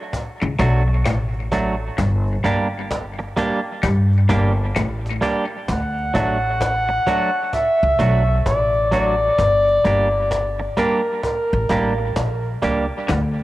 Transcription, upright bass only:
0, 0, Header, 1, 2, 480
1, 0, Start_track
1, 0, Tempo, 925212
1, 1027, Time_signature, 4, 2, 24, 8
1, 6969, End_track
2, 0, Start_track
2, 0, Title_t, "Upright bass"
2, 0, Program_c, 0, 32
2, 220, Note_on_c, 0, 37, 98
2, 299, Note_off_c, 0, 37, 0
2, 307, Note_on_c, 0, 35, 98
2, 550, Note_off_c, 0, 35, 0
2, 550, Note_on_c, 0, 33, 95
2, 974, Note_off_c, 0, 33, 0
2, 1030, Note_on_c, 0, 31, 108
2, 1241, Note_off_c, 0, 31, 0
2, 1272, Note_on_c, 0, 31, 80
2, 1695, Note_off_c, 0, 31, 0
2, 1989, Note_on_c, 0, 43, 105
2, 2201, Note_off_c, 0, 43, 0
2, 2228, Note_on_c, 0, 31, 103
2, 2440, Note_off_c, 0, 31, 0
2, 2471, Note_on_c, 0, 33, 83
2, 2682, Note_off_c, 0, 33, 0
2, 2950, Note_on_c, 0, 38, 97
2, 3161, Note_off_c, 0, 38, 0
2, 3191, Note_on_c, 0, 33, 85
2, 3614, Note_off_c, 0, 33, 0
2, 4062, Note_on_c, 0, 37, 93
2, 4140, Note_off_c, 0, 37, 0
2, 4148, Note_on_c, 0, 35, 100
2, 4360, Note_off_c, 0, 35, 0
2, 4390, Note_on_c, 0, 33, 86
2, 4814, Note_off_c, 0, 33, 0
2, 4869, Note_on_c, 0, 31, 91
2, 5081, Note_off_c, 0, 31, 0
2, 5111, Note_on_c, 0, 31, 88
2, 5535, Note_off_c, 0, 31, 0
2, 5982, Note_on_c, 0, 33, 100
2, 6060, Note_off_c, 0, 33, 0
2, 6068, Note_on_c, 0, 33, 82
2, 6281, Note_off_c, 0, 33, 0
2, 6311, Note_on_c, 0, 34, 74
2, 6523, Note_off_c, 0, 34, 0
2, 6550, Note_on_c, 0, 37, 84
2, 6681, Note_off_c, 0, 37, 0
2, 6792, Note_on_c, 0, 38, 109
2, 6969, Note_off_c, 0, 38, 0
2, 6969, End_track
0, 0, End_of_file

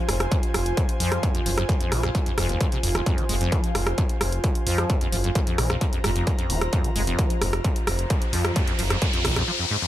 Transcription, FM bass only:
0, 0, Header, 1, 2, 480
1, 0, Start_track
1, 0, Tempo, 458015
1, 1291, Time_signature, 4, 2, 24, 8
1, 10347, End_track
2, 0, Start_track
2, 0, Title_t, "FM bass"
2, 0, Program_c, 0, 39
2, 90, Note_on_c, 0, 29, 100
2, 282, Note_off_c, 0, 29, 0
2, 571, Note_on_c, 0, 29, 89
2, 762, Note_off_c, 0, 29, 0
2, 1051, Note_on_c, 0, 41, 85
2, 1242, Note_off_c, 0, 41, 0
2, 1530, Note_on_c, 0, 30, 80
2, 1722, Note_off_c, 0, 30, 0
2, 2011, Note_on_c, 0, 34, 97
2, 2202, Note_off_c, 0, 34, 0
2, 2491, Note_on_c, 0, 29, 91
2, 2682, Note_off_c, 0, 29, 0
2, 2970, Note_on_c, 0, 29, 83
2, 3162, Note_off_c, 0, 29, 0
2, 3451, Note_on_c, 0, 29, 97
2, 3642, Note_off_c, 0, 29, 0
2, 3930, Note_on_c, 0, 29, 102
2, 4122, Note_off_c, 0, 29, 0
2, 4411, Note_on_c, 0, 29, 86
2, 4603, Note_off_c, 0, 29, 0
2, 4892, Note_on_c, 0, 41, 87
2, 5083, Note_off_c, 0, 41, 0
2, 5372, Note_on_c, 0, 30, 78
2, 5563, Note_off_c, 0, 30, 0
2, 5852, Note_on_c, 0, 34, 96
2, 6043, Note_off_c, 0, 34, 0
2, 6332, Note_on_c, 0, 29, 94
2, 6523, Note_off_c, 0, 29, 0
2, 6812, Note_on_c, 0, 27, 84
2, 7003, Note_off_c, 0, 27, 0
2, 7291, Note_on_c, 0, 29, 99
2, 7483, Note_off_c, 0, 29, 0
2, 7772, Note_on_c, 0, 29, 102
2, 7963, Note_off_c, 0, 29, 0
2, 8251, Note_on_c, 0, 29, 86
2, 8443, Note_off_c, 0, 29, 0
2, 8731, Note_on_c, 0, 41, 86
2, 8922, Note_off_c, 0, 41, 0
2, 9211, Note_on_c, 0, 30, 79
2, 9402, Note_off_c, 0, 30, 0
2, 9691, Note_on_c, 0, 34, 99
2, 9883, Note_off_c, 0, 34, 0
2, 10347, End_track
0, 0, End_of_file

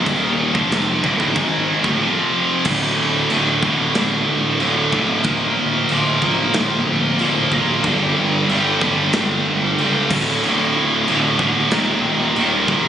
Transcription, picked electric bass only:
0, 0, Header, 1, 2, 480
1, 0, Start_track
1, 0, Tempo, 647249
1, 43, Time_signature, 4, 2, 24, 8
1, 9553, End_track
2, 0, Start_track
2, 0, Title_t, "Picked electric bass"
2, 0, Program_c, 0, 34
2, 0, Note_on_c, 0, 27, 105
2, 378, Note_off_c, 0, 27, 0
2, 408, Note_on_c, 0, 29, 97
2, 743, Note_off_c, 0, 29, 0
2, 770, Note_on_c, 0, 27, 88
2, 880, Note_off_c, 0, 27, 0
2, 889, Note_on_c, 0, 26, 86
2, 1000, Note_off_c, 0, 26, 0
2, 1008, Note_on_c, 0, 32, 90
2, 1344, Note_off_c, 0, 32, 0
2, 1366, Note_on_c, 0, 26, 84
2, 1480, Note_off_c, 0, 26, 0
2, 1969, Note_on_c, 0, 26, 101
2, 2171, Note_off_c, 0, 26, 0
2, 2211, Note_on_c, 0, 26, 91
2, 2413, Note_off_c, 0, 26, 0
2, 2451, Note_on_c, 0, 26, 83
2, 2653, Note_off_c, 0, 26, 0
2, 2691, Note_on_c, 0, 26, 89
2, 2894, Note_off_c, 0, 26, 0
2, 2936, Note_on_c, 0, 26, 99
2, 3137, Note_off_c, 0, 26, 0
2, 3169, Note_on_c, 0, 26, 93
2, 3373, Note_off_c, 0, 26, 0
2, 3413, Note_on_c, 0, 26, 98
2, 3615, Note_off_c, 0, 26, 0
2, 3649, Note_on_c, 0, 26, 97
2, 3852, Note_off_c, 0, 26, 0
2, 3889, Note_on_c, 0, 26, 100
2, 4093, Note_off_c, 0, 26, 0
2, 4135, Note_on_c, 0, 26, 89
2, 4336, Note_off_c, 0, 26, 0
2, 4372, Note_on_c, 0, 26, 90
2, 4574, Note_off_c, 0, 26, 0
2, 4612, Note_on_c, 0, 26, 89
2, 4814, Note_off_c, 0, 26, 0
2, 4850, Note_on_c, 0, 26, 93
2, 5053, Note_off_c, 0, 26, 0
2, 5088, Note_on_c, 0, 26, 85
2, 5292, Note_off_c, 0, 26, 0
2, 5336, Note_on_c, 0, 26, 97
2, 5536, Note_off_c, 0, 26, 0
2, 5575, Note_on_c, 0, 26, 101
2, 5776, Note_off_c, 0, 26, 0
2, 5815, Note_on_c, 0, 31, 108
2, 6015, Note_off_c, 0, 31, 0
2, 6054, Note_on_c, 0, 31, 83
2, 6255, Note_off_c, 0, 31, 0
2, 6295, Note_on_c, 0, 31, 87
2, 6495, Note_off_c, 0, 31, 0
2, 6533, Note_on_c, 0, 31, 84
2, 6734, Note_off_c, 0, 31, 0
2, 6772, Note_on_c, 0, 31, 87
2, 6973, Note_off_c, 0, 31, 0
2, 7024, Note_on_c, 0, 31, 87
2, 7220, Note_off_c, 0, 31, 0
2, 7261, Note_on_c, 0, 37, 90
2, 7458, Note_off_c, 0, 37, 0
2, 7492, Note_on_c, 0, 26, 94
2, 7692, Note_off_c, 0, 26, 0
2, 7745, Note_on_c, 0, 26, 97
2, 7940, Note_off_c, 0, 26, 0
2, 7977, Note_on_c, 0, 26, 76
2, 8175, Note_off_c, 0, 26, 0
2, 8223, Note_on_c, 0, 26, 101
2, 8418, Note_off_c, 0, 26, 0
2, 8447, Note_on_c, 0, 26, 90
2, 8648, Note_off_c, 0, 26, 0
2, 8689, Note_on_c, 0, 27, 94
2, 8890, Note_off_c, 0, 27, 0
2, 8921, Note_on_c, 0, 27, 90
2, 9125, Note_off_c, 0, 27, 0
2, 9161, Note_on_c, 0, 27, 100
2, 9364, Note_off_c, 0, 27, 0
2, 9405, Note_on_c, 0, 27, 90
2, 9553, Note_off_c, 0, 27, 0
2, 9553, End_track
0, 0, End_of_file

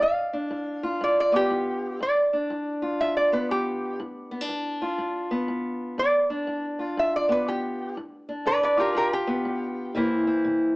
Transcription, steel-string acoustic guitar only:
0, 0, Header, 1, 2, 480
1, 0, Start_track
1, 0, Tempo, 496689
1, 9, Time_signature, 4, 2, 24, 8
1, 10397, End_track
2, 0, Start_track
2, 0, Title_t, "Steel-string acoustic guitar"
2, 0, Program_c, 0, 25
2, 14, Note_on_c, 0, 43, 76
2, 323, Note_on_c, 0, 62, 59
2, 456, Note_off_c, 0, 43, 0
2, 489, Note_on_c, 0, 43, 74
2, 805, Note_on_c, 0, 65, 69
2, 934, Note_off_c, 0, 43, 0
2, 973, Note_on_c, 0, 43, 83
2, 1275, Note_on_c, 0, 59, 63
2, 1417, Note_off_c, 0, 43, 0
2, 1451, Note_on_c, 0, 43, 73
2, 1896, Note_off_c, 0, 43, 0
2, 1910, Note_off_c, 0, 59, 0
2, 1914, Note_off_c, 0, 62, 0
2, 1915, Note_off_c, 0, 65, 0
2, 1937, Note_on_c, 0, 43, 71
2, 2253, Note_on_c, 0, 62, 57
2, 2379, Note_off_c, 0, 43, 0
2, 2417, Note_on_c, 0, 43, 69
2, 2727, Note_on_c, 0, 65, 62
2, 2860, Note_off_c, 0, 43, 0
2, 2902, Note_on_c, 0, 43, 78
2, 3211, Note_on_c, 0, 59, 57
2, 3343, Note_off_c, 0, 43, 0
2, 3386, Note_on_c, 0, 43, 69
2, 3825, Note_off_c, 0, 43, 0
2, 3862, Note_on_c, 0, 43, 81
2, 3891, Note_off_c, 0, 65, 0
2, 4164, Note_off_c, 0, 62, 0
2, 4168, Note_off_c, 0, 59, 0
2, 4168, Note_on_c, 0, 59, 59
2, 4261, Note_off_c, 0, 59, 0
2, 4261, Note_on_c, 0, 62, 51
2, 4303, Note_off_c, 0, 43, 0
2, 4339, Note_on_c, 0, 43, 67
2, 4656, Note_on_c, 0, 65, 67
2, 4782, Note_off_c, 0, 43, 0
2, 4814, Note_on_c, 0, 43, 77
2, 5130, Note_on_c, 0, 59, 59
2, 5260, Note_off_c, 0, 43, 0
2, 5296, Note_on_c, 0, 43, 74
2, 5741, Note_off_c, 0, 43, 0
2, 5778, Note_on_c, 0, 43, 78
2, 5783, Note_off_c, 0, 62, 0
2, 5807, Note_off_c, 0, 65, 0
2, 6088, Note_on_c, 0, 62, 59
2, 6222, Note_off_c, 0, 43, 0
2, 6252, Note_on_c, 0, 43, 73
2, 6560, Note_on_c, 0, 65, 70
2, 6589, Note_off_c, 0, 59, 0
2, 6699, Note_off_c, 0, 43, 0
2, 6736, Note_on_c, 0, 43, 81
2, 7041, Note_on_c, 0, 59, 57
2, 7181, Note_off_c, 0, 43, 0
2, 7224, Note_on_c, 0, 43, 72
2, 7665, Note_off_c, 0, 43, 0
2, 7675, Note_off_c, 0, 59, 0
2, 7675, Note_off_c, 0, 65, 0
2, 7679, Note_off_c, 0, 62, 0
2, 7704, Note_on_c, 0, 43, 78
2, 8009, Note_on_c, 0, 62, 54
2, 8144, Note_off_c, 0, 43, 0
2, 8172, Note_on_c, 0, 43, 74
2, 8479, Note_on_c, 0, 65, 64
2, 8618, Note_off_c, 0, 43, 0
2, 8645, Note_on_c, 0, 43, 83
2, 8961, Note_on_c, 0, 59, 58
2, 9094, Note_off_c, 0, 43, 0
2, 9132, Note_on_c, 0, 43, 70
2, 9577, Note_off_c, 0, 43, 0
2, 9592, Note_off_c, 0, 65, 0
2, 9593, Note_off_c, 0, 59, 0
2, 9597, Note_off_c, 0, 62, 0
2, 9614, Note_on_c, 0, 48, 76
2, 9620, Note_on_c, 0, 52, 64
2, 9625, Note_on_c, 0, 58, 65
2, 9632, Note_on_c, 0, 60, 60
2, 9639, Note_on_c, 0, 64, 71
2, 9926, Note_off_c, 0, 60, 0
2, 9930, Note_on_c, 0, 60, 58
2, 10059, Note_off_c, 0, 48, 0
2, 10097, Note_on_c, 0, 48, 73
2, 10394, Note_off_c, 0, 64, 0
2, 10397, Note_off_c, 0, 48, 0
2, 10397, Note_off_c, 0, 52, 0
2, 10397, Note_off_c, 0, 58, 0
2, 10397, Note_off_c, 0, 60, 0
2, 10397, End_track
0, 0, End_of_file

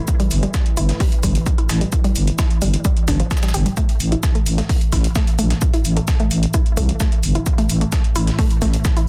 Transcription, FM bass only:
0, 0, Header, 1, 2, 480
1, 0, Start_track
1, 0, Tempo, 461538
1, 82, Time_signature, 4, 2, 24, 8
1, 9447, End_track
2, 0, Start_track
2, 0, Title_t, "FM bass"
2, 0, Program_c, 0, 39
2, 323, Note_on_c, 0, 31, 99
2, 475, Note_off_c, 0, 31, 0
2, 802, Note_on_c, 0, 31, 99
2, 954, Note_off_c, 0, 31, 0
2, 1282, Note_on_c, 0, 31, 93
2, 1434, Note_off_c, 0, 31, 0
2, 1762, Note_on_c, 0, 33, 86
2, 1914, Note_off_c, 0, 33, 0
2, 2242, Note_on_c, 0, 31, 92
2, 2394, Note_off_c, 0, 31, 0
2, 2722, Note_on_c, 0, 31, 82
2, 2874, Note_off_c, 0, 31, 0
2, 3202, Note_on_c, 0, 31, 99
2, 3354, Note_off_c, 0, 31, 0
2, 3683, Note_on_c, 0, 31, 80
2, 3834, Note_off_c, 0, 31, 0
2, 4163, Note_on_c, 0, 33, 95
2, 4314, Note_off_c, 0, 33, 0
2, 4642, Note_on_c, 0, 33, 92
2, 4794, Note_off_c, 0, 33, 0
2, 5121, Note_on_c, 0, 33, 91
2, 5274, Note_off_c, 0, 33, 0
2, 5603, Note_on_c, 0, 34, 83
2, 5755, Note_off_c, 0, 34, 0
2, 6083, Note_on_c, 0, 33, 95
2, 6235, Note_off_c, 0, 33, 0
2, 6563, Note_on_c, 0, 33, 85
2, 6714, Note_off_c, 0, 33, 0
2, 7042, Note_on_c, 0, 36, 82
2, 7194, Note_off_c, 0, 36, 0
2, 7523, Note_on_c, 0, 31, 85
2, 7675, Note_off_c, 0, 31, 0
2, 8003, Note_on_c, 0, 33, 93
2, 8155, Note_off_c, 0, 33, 0
2, 8483, Note_on_c, 0, 33, 91
2, 8635, Note_off_c, 0, 33, 0
2, 8963, Note_on_c, 0, 33, 92
2, 9114, Note_off_c, 0, 33, 0
2, 9447, End_track
0, 0, End_of_file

